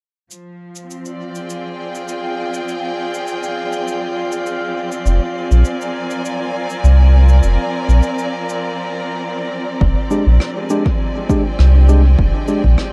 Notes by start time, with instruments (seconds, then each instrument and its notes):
0.30 string section F3, synth texture F4 F5, cabasa
0.75 cabasa
0.85 string section C4
0.91 cabasa
1.05 string section D5, cabasa
1.23 string section G5
1.35 string section G#4, cabasa
1.50 cabasa
1.95 cabasa
2.08 cabasa
2.54 cabasa
2.68 cabasa
3.14 cabasa
3.27 cabasa
3.43 cabasa
3.73 cabasa
3.88 cabasa
4.32 cabasa
4.46 cabasa
4.92 cabasa
5.06 sub bass F1, cabasa
5.38 string section G#5
5.51 sub bass A#1, cabasa
5.65 cabasa
5.74 string section A#4
5.81 cabasa
6.10 cabasa
6.25 cabasa
6.70 cabasa
6.84 sub bass C2, cabasa
7.29 cabasa
7.43 sub bass F1, cabasa
7.89 sub bass A#1, cabasa
8.03 cabasa
8.18 cabasa
8.49 cabasa
9.81 sub bass F1, kick
10.11 tine electric piano G#3 D4 G4, cabasa
10.26 sub bass A#1
10.40 cross-stick
10.55 string section G#5
10.70 tine electric piano G#3 D4 G4, cabasa
10.86 kick
11.30 tine electric piano G#3 D4 G4, string section G5, kick, cabasa
11.59 sub bass C2, cross-stick
11.89 tine electric piano G#3 D4 G4, cabasa
12.19 sub bass F1, kick
12.48 tine electric piano G#3 D4 G4, cabasa
12.64 sub bass A#1, kick
12.78 cross-stick